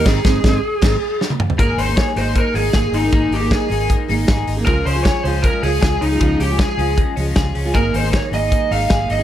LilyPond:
<<
  \new Staff \with { instrumentName = "Lead electric guitar" } { \time 4/4 \key aes \major \tempo 4 = 156 aes'2. r4 | bes'8 c''8 des''8 c''8 bes'8 aes'8 aes'8 ees'8~ | ees'8 g'8 aes'4 r2 | bes'8 c''8 des''8 c''8 bes'8 aes'8 aes'8 ees'8~ |
ees'8 g'8 aes'4 r2 | bes'8 c''8 des''8 ees''4 f''4 ees''8 | }
  \new Staff \with { instrumentName = "Clean electric guitar" } { \time 4/4 \key aes \major r1 | <bes aes'>8 ees'8 aes'8 ees'8 bes8 ees'8 aes'8 ees'8 | <bes aes'>8 ees'8 aes'8 ees'8 bes8 ees'8 aes'8 ees'8 | <f aes'>8 des'8 aes'8 des'8 aes8 des'8 aes'8 des'8 |
<f aes'>8 des'8 aes'8 des'8 aes8 des'8 aes'8 des'8 | <ees aes'>8 ees'8 aes'8 ees'8 bes8 ees'8 aes'8 ees'8 | }
  \new Staff \with { instrumentName = "Steel-string acoustic guitar" } { \time 4/4 \key aes \major <aes, ees aes c' ees' aes'>8 <aes c' ees' aes'>8 <aes c' ees' aes'>8 r8 <aes c' ees' aes'>8 r4. | <aes bes ees' aes'>8. <bes ees' aes'>8. <aes bes ees' aes'>4 <aes bes ees' aes'>8 <aes bes ees' aes'>8. <bes ees' aes'>16 | <aes bes ees' aes'>8. <bes ees' aes'>8. <aes bes ees' aes'>4 <aes bes ees' aes'>8 <aes bes ees' aes'>8. <bes ees' aes'>16 | <des f aes f' aes'>8. <aes f' aes'>8. <f aes f' aes'>4 <f aes f' aes'>8 <f aes f' aes'>8. <aes f' aes'>16 |
<des f aes f' aes'>8. <aes f' aes'>8. <f aes f' aes'>4 <f aes f' aes'>8 <f aes f' aes'>8. <aes f' aes'>16 | <aes bes ees' aes'>8. <bes ees' aes'>8. <aes bes ees' aes'>4 <aes bes ees' aes'>8 <aes bes ees' aes'>8. <ees' aes'>16 | }
  \new Staff \with { instrumentName = "Fingered electric bass" } { \clef bass \time 4/4 \key aes \major aes,,8 aes,,8 aes,,8 r8 aes,,8 r4. | aes,,8 aes,,8. r16 aes,,8. r16 aes,,8 aes,,8 aes,,8 | aes,,8 aes,,8. r16 aes,,8. r16 aes,,8 aes,,8 aes,,8 | des,8 des,8. r16 des,8. r16 des,8 des,8 des,8 |
des,8 des,8. r16 des,8. r16 des,8 des,8 des,8 | aes,,8 aes,,8. r16 aes,,8. r16 aes,,8 aes,,8 aes,,8 | }
  \new DrumStaff \with { instrumentName = "Drums" } \drummode { \time 4/4 <cymc bd sn>8 <bd sn>8 <bd sn>4 <cymc bd sn>4 sn16 tommh16 toml16 tomfh16 | <hh bd>8 hho8 <hh bd sn>8 hho8 <hh bd>8 hho8 <hh bd sn>8 hho8 | <hh bd>8 hho8 <hh bd sn>8 hho8 <hh bd>8 hho8 <hh bd sn>8 hho8 | <hh bd>8 hho8 <hh bd sn>8 hho8 <hh bd>8 hho8 <hh bd sn>8 hho8 |
<hh bd>8 hho8 <hh bd sn>8 hho8 <hh bd>8 hho8 <hh bd sn>8 hho8 | <hh bd>8 hho8 <hh bd sn>8 hho8 <hh bd>8 hho8 <hh bd sn>8 hho8 | }
>>